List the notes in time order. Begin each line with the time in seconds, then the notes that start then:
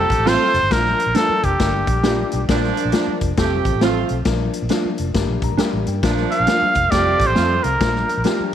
Already playing: A3 C4 F4 G4 A4 C5
0.10 A1, kick, closed hi-hat
0.18 A1
0.25 A3 C4 F4 A4 C5, snare, closed hi-hat
0.54 F1, closed hi-hat
0.62 G1
0.70 A#1 F3 A#3 D4 A#4, kick, snare, closed hi-hat
0.85 snare
0.99 closed hi-hat
1.06 A#1
1.15 F3 A#3 D4 F4 A4 A#4, snare, closed hi-hat
1.29 muted fingered electric bass stroke
1.43 F1 G4, kick, closed hi-hat
1.59 G1 G3 A#3 D4 A#4, kick, snare, closed hi-hat
1.87 A#1, kick, closed hi-hat
2.03 G3 A#3 D4 F4 G4 A#4, snare, closed hi-hat
2.31 B1, closed hi-hat
2.49 A#1 F3 A#3 D4 A#4, kick, snare, closed hi-hat
2.63 snare
2.77 closed hi-hat
2.85 A#1
2.92 F3 A#3 D4 F4 A#4, snare, closed hi-hat
3.07 muted fingered electric bass stroke
3.21 F1, kick, closed hi-hat
3.37 F1 F3 A3 C4 G4 A4, kick, snare, closed hi-hat
3.65 A1, kick, closed hi-hat
3.75 A1
3.81 F3 A3 C4 F4 A4 C5, snare, closed hi-hat
4.09 B1, closed hi-hat
4.25 A#1 F3 A#3 D4 A#4, kick, snare, closed hi-hat
4.53 closed hi-hat
4.62 A#1
4.69 F3 A#3 D4 F4 A#4, snare, closed hi-hat
4.85 muted fingered electric bass stroke
4.98 F1, closed hi-hat
5.14 G1 G3 A#3 D4 A#4, kick, snare, closed hi-hat
5.29 A#1
5.42 A#1 A#5, kick, closed hi-hat
5.51 G1
5.57 G3 A#3 D4 G4 A#4 G5, muted fingered electric bass stroke, snare, closed hi-hat
5.73 A1
5.86 G2 G5, closed hi-hat
6.02 A#1 F3 A#3 D4 A#4, kick, snare, closed hi-hat
6.17 snare
6.31 F5, closed hi-hat
6.40 A#1
6.47 F3 A#3 D4 F4 A#4, snare, closed hi-hat
6.62 muted fingered electric bass stroke
6.75 F1, kick, closed hi-hat
6.90 F1 F3 A3 C4 G4 A4 D5, kick, snare, closed hi-hat
7.20 A1, kick, closed hi-hat
7.27 A1 C5
7.35 F2 F3 A3 C4 F4 A4, snare, closed hi-hat
7.63 C2 A#4, closed hi-hat
7.80 A#1 F3 A#3 D4 A#4, kick, snare, closed hi-hat
7.95 snare
8.09 closed hi-hat
8.17 A#1
8.24 F3 A#3 D4 F4 G4 A#4, snare, closed hi-hat
8.40 muted fingered electric bass stroke